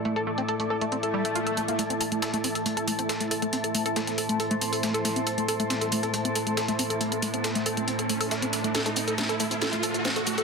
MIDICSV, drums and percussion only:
0, 0, Header, 1, 2, 480
1, 0, Start_track
1, 0, Key_signature, 0, "minor"
1, 0, Tempo, 434783
1, 56, Time_signature, 4, 2, 24, 8
1, 11520, End_track
2, 0, Start_track
2, 0, Title_t, "Drums"
2, 56, Note_on_c, 9, 42, 76
2, 166, Note_off_c, 9, 42, 0
2, 179, Note_on_c, 9, 42, 49
2, 289, Note_off_c, 9, 42, 0
2, 418, Note_on_c, 9, 42, 51
2, 528, Note_off_c, 9, 42, 0
2, 535, Note_on_c, 9, 42, 74
2, 646, Note_off_c, 9, 42, 0
2, 659, Note_on_c, 9, 42, 50
2, 769, Note_off_c, 9, 42, 0
2, 899, Note_on_c, 9, 42, 49
2, 1009, Note_off_c, 9, 42, 0
2, 1015, Note_on_c, 9, 42, 59
2, 1126, Note_off_c, 9, 42, 0
2, 1139, Note_on_c, 9, 42, 49
2, 1249, Note_off_c, 9, 42, 0
2, 1379, Note_on_c, 9, 42, 51
2, 1489, Note_off_c, 9, 42, 0
2, 1496, Note_on_c, 9, 42, 77
2, 1606, Note_off_c, 9, 42, 0
2, 1618, Note_on_c, 9, 42, 50
2, 1729, Note_off_c, 9, 42, 0
2, 1736, Note_on_c, 9, 42, 76
2, 1846, Note_off_c, 9, 42, 0
2, 1859, Note_on_c, 9, 42, 51
2, 1970, Note_off_c, 9, 42, 0
2, 1975, Note_on_c, 9, 42, 83
2, 1976, Note_off_c, 9, 42, 0
2, 1976, Note_on_c, 9, 42, 81
2, 2087, Note_off_c, 9, 42, 0
2, 2100, Note_on_c, 9, 42, 52
2, 2211, Note_off_c, 9, 42, 0
2, 2214, Note_on_c, 9, 42, 69
2, 2216, Note_on_c, 9, 46, 103
2, 2325, Note_off_c, 9, 42, 0
2, 2327, Note_off_c, 9, 46, 0
2, 2339, Note_on_c, 9, 42, 55
2, 2449, Note_off_c, 9, 42, 0
2, 2454, Note_on_c, 9, 38, 111
2, 2454, Note_on_c, 9, 42, 88
2, 2456, Note_off_c, 9, 42, 0
2, 2456, Note_on_c, 9, 42, 81
2, 2564, Note_off_c, 9, 38, 0
2, 2566, Note_off_c, 9, 42, 0
2, 2579, Note_on_c, 9, 42, 55
2, 2690, Note_off_c, 9, 42, 0
2, 2695, Note_on_c, 9, 42, 67
2, 2695, Note_on_c, 9, 46, 100
2, 2805, Note_off_c, 9, 42, 0
2, 2806, Note_off_c, 9, 46, 0
2, 2818, Note_on_c, 9, 42, 43
2, 2819, Note_off_c, 9, 42, 0
2, 2819, Note_on_c, 9, 42, 54
2, 2930, Note_off_c, 9, 42, 0
2, 2935, Note_on_c, 9, 42, 88
2, 3046, Note_off_c, 9, 42, 0
2, 3059, Note_on_c, 9, 42, 53
2, 3169, Note_off_c, 9, 42, 0
2, 3175, Note_on_c, 9, 46, 104
2, 3176, Note_on_c, 9, 42, 66
2, 3285, Note_off_c, 9, 46, 0
2, 3286, Note_off_c, 9, 42, 0
2, 3298, Note_on_c, 9, 42, 54
2, 3409, Note_off_c, 9, 42, 0
2, 3415, Note_on_c, 9, 38, 118
2, 3415, Note_on_c, 9, 42, 88
2, 3416, Note_off_c, 9, 42, 0
2, 3416, Note_on_c, 9, 42, 81
2, 3525, Note_off_c, 9, 38, 0
2, 3526, Note_off_c, 9, 42, 0
2, 3538, Note_on_c, 9, 42, 44
2, 3539, Note_off_c, 9, 42, 0
2, 3539, Note_on_c, 9, 42, 53
2, 3649, Note_off_c, 9, 42, 0
2, 3655, Note_on_c, 9, 42, 66
2, 3656, Note_on_c, 9, 46, 107
2, 3766, Note_off_c, 9, 42, 0
2, 3766, Note_off_c, 9, 46, 0
2, 3779, Note_on_c, 9, 42, 55
2, 3889, Note_off_c, 9, 42, 0
2, 3895, Note_on_c, 9, 42, 87
2, 4005, Note_off_c, 9, 42, 0
2, 4019, Note_on_c, 9, 42, 54
2, 4129, Note_off_c, 9, 42, 0
2, 4135, Note_on_c, 9, 42, 65
2, 4135, Note_on_c, 9, 46, 107
2, 4245, Note_off_c, 9, 42, 0
2, 4246, Note_off_c, 9, 46, 0
2, 4258, Note_on_c, 9, 42, 56
2, 4368, Note_off_c, 9, 42, 0
2, 4374, Note_on_c, 9, 38, 117
2, 4374, Note_on_c, 9, 42, 89
2, 4484, Note_off_c, 9, 38, 0
2, 4484, Note_off_c, 9, 42, 0
2, 4498, Note_on_c, 9, 38, 37
2, 4498, Note_on_c, 9, 42, 57
2, 4608, Note_off_c, 9, 42, 0
2, 4609, Note_off_c, 9, 38, 0
2, 4614, Note_on_c, 9, 46, 106
2, 4615, Note_on_c, 9, 42, 69
2, 4724, Note_off_c, 9, 46, 0
2, 4725, Note_off_c, 9, 42, 0
2, 4738, Note_on_c, 9, 42, 53
2, 4849, Note_off_c, 9, 42, 0
2, 4855, Note_on_c, 9, 42, 63
2, 4965, Note_off_c, 9, 42, 0
2, 4977, Note_on_c, 9, 42, 52
2, 5088, Note_off_c, 9, 42, 0
2, 5094, Note_on_c, 9, 46, 109
2, 5095, Note_on_c, 9, 42, 70
2, 5205, Note_off_c, 9, 42, 0
2, 5205, Note_off_c, 9, 46, 0
2, 5218, Note_on_c, 9, 46, 61
2, 5329, Note_off_c, 9, 46, 0
2, 5334, Note_on_c, 9, 38, 119
2, 5334, Note_on_c, 9, 42, 89
2, 5336, Note_off_c, 9, 42, 0
2, 5336, Note_on_c, 9, 42, 86
2, 5445, Note_off_c, 9, 38, 0
2, 5446, Note_off_c, 9, 42, 0
2, 5459, Note_on_c, 9, 42, 53
2, 5569, Note_off_c, 9, 42, 0
2, 5574, Note_on_c, 9, 38, 42
2, 5574, Note_on_c, 9, 42, 67
2, 5575, Note_on_c, 9, 46, 112
2, 5685, Note_off_c, 9, 38, 0
2, 5685, Note_off_c, 9, 42, 0
2, 5686, Note_off_c, 9, 46, 0
2, 5699, Note_on_c, 9, 42, 56
2, 5809, Note_off_c, 9, 42, 0
2, 5814, Note_on_c, 9, 42, 88
2, 5816, Note_off_c, 9, 42, 0
2, 5816, Note_on_c, 9, 42, 83
2, 5926, Note_off_c, 9, 42, 0
2, 5939, Note_on_c, 9, 42, 52
2, 6049, Note_off_c, 9, 42, 0
2, 6054, Note_on_c, 9, 42, 69
2, 6055, Note_on_c, 9, 46, 112
2, 6165, Note_off_c, 9, 42, 0
2, 6166, Note_off_c, 9, 46, 0
2, 6180, Note_on_c, 9, 42, 54
2, 6290, Note_off_c, 9, 42, 0
2, 6295, Note_on_c, 9, 38, 115
2, 6295, Note_on_c, 9, 42, 87
2, 6297, Note_off_c, 9, 42, 0
2, 6297, Note_on_c, 9, 42, 81
2, 6405, Note_off_c, 9, 38, 0
2, 6407, Note_off_c, 9, 42, 0
2, 6419, Note_on_c, 9, 42, 55
2, 6530, Note_off_c, 9, 42, 0
2, 6534, Note_on_c, 9, 42, 68
2, 6537, Note_on_c, 9, 46, 112
2, 6645, Note_off_c, 9, 42, 0
2, 6647, Note_off_c, 9, 46, 0
2, 6658, Note_on_c, 9, 42, 44
2, 6659, Note_off_c, 9, 42, 0
2, 6659, Note_on_c, 9, 42, 53
2, 6770, Note_off_c, 9, 42, 0
2, 6775, Note_on_c, 9, 42, 88
2, 6777, Note_off_c, 9, 42, 0
2, 6777, Note_on_c, 9, 42, 62
2, 6887, Note_off_c, 9, 42, 0
2, 6900, Note_on_c, 9, 42, 52
2, 7011, Note_off_c, 9, 42, 0
2, 7015, Note_on_c, 9, 42, 69
2, 7016, Note_on_c, 9, 46, 111
2, 7126, Note_off_c, 9, 42, 0
2, 7127, Note_off_c, 9, 46, 0
2, 7140, Note_on_c, 9, 42, 55
2, 7250, Note_off_c, 9, 42, 0
2, 7255, Note_on_c, 9, 38, 117
2, 7255, Note_on_c, 9, 42, 89
2, 7257, Note_off_c, 9, 42, 0
2, 7257, Note_on_c, 9, 42, 83
2, 7366, Note_off_c, 9, 38, 0
2, 7368, Note_off_c, 9, 42, 0
2, 7379, Note_on_c, 9, 42, 53
2, 7490, Note_off_c, 9, 42, 0
2, 7495, Note_on_c, 9, 42, 68
2, 7496, Note_on_c, 9, 46, 110
2, 7606, Note_off_c, 9, 42, 0
2, 7607, Note_off_c, 9, 46, 0
2, 7620, Note_on_c, 9, 42, 54
2, 7731, Note_off_c, 9, 42, 0
2, 7736, Note_on_c, 9, 42, 88
2, 7737, Note_off_c, 9, 42, 0
2, 7737, Note_on_c, 9, 42, 80
2, 7847, Note_off_c, 9, 42, 0
2, 7860, Note_on_c, 9, 42, 51
2, 7970, Note_off_c, 9, 42, 0
2, 7975, Note_on_c, 9, 42, 68
2, 7977, Note_on_c, 9, 46, 110
2, 8085, Note_off_c, 9, 42, 0
2, 8087, Note_off_c, 9, 46, 0
2, 8100, Note_on_c, 9, 42, 52
2, 8211, Note_off_c, 9, 42, 0
2, 8216, Note_on_c, 9, 38, 119
2, 8216, Note_on_c, 9, 42, 89
2, 8217, Note_off_c, 9, 42, 0
2, 8217, Note_on_c, 9, 42, 78
2, 8326, Note_off_c, 9, 38, 0
2, 8327, Note_off_c, 9, 42, 0
2, 8339, Note_on_c, 9, 38, 38
2, 8340, Note_on_c, 9, 42, 54
2, 8449, Note_off_c, 9, 38, 0
2, 8451, Note_off_c, 9, 42, 0
2, 8455, Note_on_c, 9, 42, 69
2, 8456, Note_on_c, 9, 46, 108
2, 8566, Note_off_c, 9, 42, 0
2, 8567, Note_off_c, 9, 46, 0
2, 8580, Note_on_c, 9, 42, 51
2, 8691, Note_off_c, 9, 42, 0
2, 8696, Note_on_c, 9, 42, 90
2, 8697, Note_off_c, 9, 42, 0
2, 8697, Note_on_c, 9, 42, 60
2, 8808, Note_off_c, 9, 42, 0
2, 8820, Note_on_c, 9, 42, 49
2, 8930, Note_off_c, 9, 42, 0
2, 8936, Note_on_c, 9, 42, 69
2, 8937, Note_on_c, 9, 46, 106
2, 9047, Note_off_c, 9, 42, 0
2, 9047, Note_off_c, 9, 46, 0
2, 9059, Note_on_c, 9, 46, 63
2, 9170, Note_off_c, 9, 46, 0
2, 9176, Note_on_c, 9, 38, 120
2, 9176, Note_on_c, 9, 42, 91
2, 9177, Note_off_c, 9, 42, 0
2, 9177, Note_on_c, 9, 42, 79
2, 9287, Note_off_c, 9, 38, 0
2, 9287, Note_off_c, 9, 42, 0
2, 9300, Note_on_c, 9, 42, 50
2, 9411, Note_off_c, 9, 42, 0
2, 9417, Note_on_c, 9, 38, 41
2, 9417, Note_on_c, 9, 42, 68
2, 9417, Note_on_c, 9, 46, 110
2, 9527, Note_off_c, 9, 38, 0
2, 9527, Note_off_c, 9, 42, 0
2, 9527, Note_off_c, 9, 46, 0
2, 9542, Note_on_c, 9, 42, 51
2, 9652, Note_off_c, 9, 42, 0
2, 9656, Note_on_c, 9, 42, 88
2, 9658, Note_off_c, 9, 42, 0
2, 9658, Note_on_c, 9, 38, 49
2, 9658, Note_on_c, 9, 42, 77
2, 9658, Note_on_c, 9, 82, 45
2, 9769, Note_off_c, 9, 38, 0
2, 9769, Note_off_c, 9, 42, 0
2, 9769, Note_off_c, 9, 82, 0
2, 9780, Note_on_c, 9, 42, 50
2, 9780, Note_on_c, 9, 82, 30
2, 9891, Note_off_c, 9, 42, 0
2, 9891, Note_off_c, 9, 82, 0
2, 9896, Note_on_c, 9, 42, 68
2, 9897, Note_on_c, 9, 46, 106
2, 9897, Note_on_c, 9, 82, 78
2, 10007, Note_off_c, 9, 42, 0
2, 10008, Note_off_c, 9, 46, 0
2, 10008, Note_off_c, 9, 82, 0
2, 10021, Note_on_c, 9, 42, 51
2, 10021, Note_on_c, 9, 82, 34
2, 10131, Note_off_c, 9, 42, 0
2, 10131, Note_off_c, 9, 82, 0
2, 10136, Note_on_c, 9, 38, 115
2, 10136, Note_on_c, 9, 42, 88
2, 10137, Note_off_c, 9, 38, 0
2, 10137, Note_off_c, 9, 42, 0
2, 10137, Note_on_c, 9, 38, 51
2, 10137, Note_on_c, 9, 42, 77
2, 10137, Note_on_c, 9, 82, 45
2, 10248, Note_off_c, 9, 38, 0
2, 10248, Note_off_c, 9, 42, 0
2, 10248, Note_off_c, 9, 82, 0
2, 10261, Note_on_c, 9, 42, 51
2, 10371, Note_off_c, 9, 42, 0
2, 10376, Note_on_c, 9, 42, 70
2, 10377, Note_on_c, 9, 46, 106
2, 10377, Note_on_c, 9, 82, 77
2, 10486, Note_off_c, 9, 42, 0
2, 10488, Note_off_c, 9, 46, 0
2, 10488, Note_off_c, 9, 82, 0
2, 10499, Note_on_c, 9, 42, 43
2, 10500, Note_off_c, 9, 42, 0
2, 10500, Note_on_c, 9, 42, 49
2, 10500, Note_on_c, 9, 82, 34
2, 10611, Note_off_c, 9, 42, 0
2, 10611, Note_off_c, 9, 82, 0
2, 10616, Note_on_c, 9, 42, 91
2, 10617, Note_off_c, 9, 42, 0
2, 10617, Note_on_c, 9, 38, 53
2, 10617, Note_on_c, 9, 42, 57
2, 10617, Note_on_c, 9, 82, 44
2, 10727, Note_off_c, 9, 38, 0
2, 10727, Note_off_c, 9, 42, 0
2, 10727, Note_off_c, 9, 82, 0
2, 10739, Note_on_c, 9, 42, 48
2, 10850, Note_off_c, 9, 42, 0
2, 10855, Note_on_c, 9, 42, 70
2, 10855, Note_on_c, 9, 46, 108
2, 10855, Note_on_c, 9, 82, 78
2, 10965, Note_off_c, 9, 42, 0
2, 10966, Note_off_c, 9, 46, 0
2, 10966, Note_off_c, 9, 82, 0
2, 10978, Note_on_c, 9, 42, 51
2, 10978, Note_on_c, 9, 82, 33
2, 11089, Note_off_c, 9, 42, 0
2, 11089, Note_off_c, 9, 82, 0
2, 11095, Note_on_c, 9, 38, 120
2, 11095, Note_on_c, 9, 42, 91
2, 11095, Note_on_c, 9, 82, 45
2, 11205, Note_off_c, 9, 82, 0
2, 11206, Note_off_c, 9, 38, 0
2, 11206, Note_off_c, 9, 42, 0
2, 11218, Note_on_c, 9, 42, 50
2, 11219, Note_off_c, 9, 42, 0
2, 11219, Note_on_c, 9, 42, 45
2, 11329, Note_off_c, 9, 42, 0
2, 11335, Note_on_c, 9, 42, 68
2, 11336, Note_on_c, 9, 46, 106
2, 11336, Note_on_c, 9, 82, 79
2, 11445, Note_off_c, 9, 42, 0
2, 11446, Note_off_c, 9, 46, 0
2, 11446, Note_off_c, 9, 82, 0
2, 11458, Note_on_c, 9, 42, 49
2, 11458, Note_on_c, 9, 82, 34
2, 11520, Note_off_c, 9, 42, 0
2, 11520, Note_off_c, 9, 82, 0
2, 11520, End_track
0, 0, End_of_file